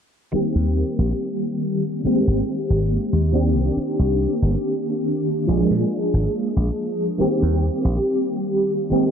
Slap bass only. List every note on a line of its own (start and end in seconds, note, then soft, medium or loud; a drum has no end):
0.34 muted slap bass stroke soft
0.56 0.82 D#2 medium
0.99 1.12 A#1 medium
2.05 muted slap bass stroke soft
2.27 2.40 G#1 medium
2.70 2.96 G#1 medium
3.13 3.56 D#2 medium
3.56 3.69 C2 medium
3.77 muted slap bass stroke soft
3.99 4.25 C2 medium
4.42 4.55 G1 medium
5.48 5.62 A#1 medium
5.70 5.83 A#2 medium
6.14 6.26 G#1 medium
6.56 6.69 A#1 medium
7.20 muted slap bass stroke soft
7.42 7.68 D#2 medium
7.85 7.98 A#1 medium
8.91 muted slap bass stroke soft